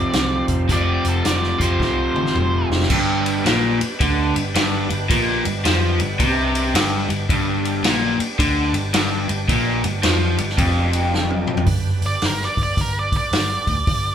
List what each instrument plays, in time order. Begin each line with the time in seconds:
Already playing: overdriven electric guitar F2 C3 F3 C4, tonewheel organ C4 F4 A4 C5, lead electric guitar D5
0.13 picked electric bass C2, snare, closed hi-hat
0.48 picked electric bass F1, kick, closed hi-hat
0.68 picked electric bass F1, overdriven electric guitar F2 C3 F3, tonewheel organ C4 F4 A4, kick, closed hi-hat
0.73 lead electric guitar D5
1.04 picked electric bass F1, closed hi-hat
1.09 lead electric guitar A4
1.25 picked electric bass F1, lead electric guitar D5, snare, closed hi-hat
1.43 snare
1.58 picked electric bass F2, overdriven electric guitar F2 C3 F3, lead electric guitar C5, kick, closed hi-hat
1.80 picked electric bass C2, kick, snare
2.15 picked electric bass A1, mid tom
2.26 snare
2.35 picked electric bass F1, mid tom
2.70 picked electric bass F1, snare
2.82 snare
2.89 picked electric bass G1, overdriven electric guitar G2, tonewheel organ B3 D4 G4 B4, kick, crash
3.26 ride
3.45 picked electric bass A#1, overdriven electric guitar A#2, snare, ride
3.80 muted overdriven electric guitar stroke, muted picked electric bass stroke, ride
4.00 picked electric bass D2, overdriven electric guitar D3, kick, ride
4.34 picked electric bass G1, overdriven electric guitar G2, ride
4.55 picked electric bass G1, overdriven electric guitar G2, snare, ride
4.90 picked electric bass G1, overdriven electric guitar G2, ride
5.09 picked electric bass A#1, overdriven electric guitar A#2, tonewheel organ B3 D4 G4 B4, kick, ride
5.44 picked electric bass G1, overdriven electric guitar G2, ride
5.65 picked electric bass F2, overdriven electric guitar F3, snare, ride
5.99 picked electric bass G1, overdriven electric guitar G2, ride
6.19 picked electric bass C2, overdriven electric guitar C3, kick, ride
6.55 ride
6.74 picked electric bass G1, overdriven electric guitar G2, snare, ride
7.09 picked electric bass G1, overdriven electric guitar G2, ride
7.28 picked electric bass G1, overdriven electric guitar G2, tonewheel organ B3 D4 G4, kick, ride
7.65 ride
7.83 picked electric bass A#1, overdriven electric guitar A#2, snare, ride
8.18 muted picked electric bass stroke, muted overdriven electric guitar stroke, ride
8.39 picked electric bass D2, overdriven electric guitar D3, kick, ride
8.73 picked electric bass G1, overdriven electric guitar G2, ride
8.94 picked electric bass G1, overdriven electric guitar G2, snare, ride
9.28 picked electric bass G1, overdriven electric guitar G2, ride
9.47 picked electric bass A#1, overdriven electric guitar A#2, tonewheel organ B3 D4 G4, kick, ride
9.84 picked electric bass G1, overdriven electric guitar G2, ride
10.03 picked electric bass F2, overdriven electric guitar F3, snare, ride
10.38 picked electric bass G1, overdriven electric guitar G2, ride
10.49 snare
10.58 picked electric bass F1, overdriven electric guitar F2, kick, ride
10.93 ride
11.14 snare
11.30 high tom
11.47 mid tom
11.57 floor tom
11.66 picked electric bass G1, tonewheel organ B3 D4 G4 B4, kick, open hi-hat
12.02 picked electric bass G1, open hi-hat
12.06 lead electric guitar D5
12.22 picked electric bass G1, snare, open hi-hat
12.26 lead electric guitar A#4
12.41 lead electric guitar D5, snare
12.57 picked electric bass G1, kick, open hi-hat
12.63 lead electric guitar D5
12.77 picked electric bass G1, lead electric guitar A#4, kick, open hi-hat
12.99 lead electric guitar D5
13.12 kick, open hi-hat
13.17 lead electric guitar D5
13.32 picked electric bass G1, snare, open hi-hat
13.67 picked electric bass D2, kick, open hi-hat
13.87 picked electric bass G1, tonewheel organ B3 D4 G4 D5, kick, open hi-hat